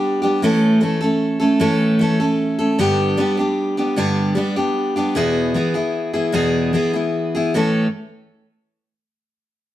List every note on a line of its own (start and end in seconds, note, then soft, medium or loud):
0.00 0.23 G3 medium
0.00 0.22 B3 medium
0.00 0.22 D4 medium
0.00 0.21 G4 medium
0.22 0.43 G3 medium
0.22 0.42 B3 medium
0.22 0.42 D4 medium
0.22 0.41 G4 medium
0.42 0.81 A2 medium
0.42 0.79 E3 medium
0.42 0.80 A3 loud
0.42 0.81 C#4 medium
0.42 0.82 A4 loud
0.81 1.00 E3 medium
0.81 1.00 A3 medium
0.81 1.01 C#4 medium
0.81 0.99 A4 medium
1.01 1.41 A3 medium
1.01 1.40 C#4 medium
1.01 1.38 A4 medium
1.40 1.60 A3 medium
1.40 1.59 C#4 medium
1.40 1.59 A4 medium
1.60 1.99 A2 medium
1.60 1.98 E3 medium
1.60 1.99 A3 loud
1.60 2.00 C#4 medium
1.60 2.00 A4 loud
1.99 2.19 E3 medium
1.99 2.20 A3 medium
1.99 2.20 C#4 medium
1.99 2.19 A4 medium
2.20 2.60 A3 soft
2.20 2.59 C#4 medium
2.20 2.57 A4 medium
2.59 2.79 A3 soft
2.59 2.79 C#4 medium
2.59 2.78 A4 medium
2.78 3.18 G2 medium
2.78 3.18 D3 loud
2.78 3.16 G3 medium
2.78 3.17 B3 loud
2.78 3.18 D4 loud
2.78 3.19 G4 loud
3.17 3.37 G3 medium
3.17 3.38 B3 medium
3.17 3.38 D4 medium
3.17 3.36 G4 medium
3.37 3.78 G3 medium
3.37 3.77 B3 medium
3.37 3.77 D4 medium
3.37 3.76 G4 medium
3.77 3.97 G3 medium
3.77 3.97 B3 medium
3.77 3.96 D4 medium
3.77 3.97 G4 medium
3.96 4.36 G2 medium
3.96 4.37 D3 medium
3.96 4.34 G3 loud
3.96 4.35 B3 medium
3.96 4.36 D4 loud
3.96 4.37 G4 medium
4.35 4.56 G3 medium
4.35 4.56 B3 medium
4.35 4.56 D4 medium
4.35 4.55 G4 medium
4.56 4.97 G3 soft
4.56 4.97 B3 medium
4.56 4.96 D4 medium
4.56 4.95 G4 medium
4.96 5.15 G3 medium
4.96 5.15 B3 medium
4.96 5.16 D4 medium
4.96 5.16 G4 medium
5.15 5.55 E2 loud
5.15 5.55 B2 medium
5.15 5.53 E3 medium
5.15 5.54 B3 loud
5.15 5.55 E4 loud
5.15 5.55 G#4 loud
5.54 5.75 E3 medium
5.54 5.74 B3 medium
5.54 5.74 E4 medium
5.54 5.73 G#4 medium
5.74 6.14 E3 medium
5.74 6.14 B3 medium
5.74 6.12 E4 medium
5.74 6.12 G#4 medium
6.13 6.32 E3 medium
6.13 6.33 B3 medium
6.13 6.33 E4 medium
6.13 6.33 G#4 medium
6.32 6.73 E2 medium
6.32 6.74 B2 medium
6.32 6.72 E3 medium
6.32 6.73 B3 medium
6.32 6.73 E4 medium
6.32 6.74 G#4 loud
6.73 6.94 E3 medium
6.73 6.94 B3 medium
6.73 6.92 E4 medium
6.73 6.92 G#4 medium
6.93 7.35 E3 medium
6.93 7.35 B3 medium
6.93 7.34 E4 medium
6.93 7.33 G#4 medium
7.35 7.54 E3 medium
7.35 7.55 B3 medium
7.35 7.55 E4 medium
7.35 7.54 G#4 medium
7.54 7.86 A2 medium
7.54 7.86 E3 loud
7.54 7.86 A3 medium
7.54 7.87 C#4 medium
7.54 7.87 A4 medium